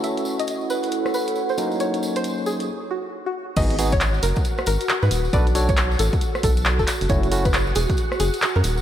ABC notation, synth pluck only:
X:1
M:4/4
L:1/16
Q:"Swing 16ths" 1/4=136
K:G#m
V:1 name="Synth pluck"
e z2 d z2 B2 z2 B z2 ^B z2 | c z2 ^B z2 G2 z2 F z2 F z2 | d z2 c z2 A2 z2 A z2 B z2 | =d z2 c z2 =A2 z2 A z2 A z2 |
c z2 B z2 G2 z2 G z2 A z2 |]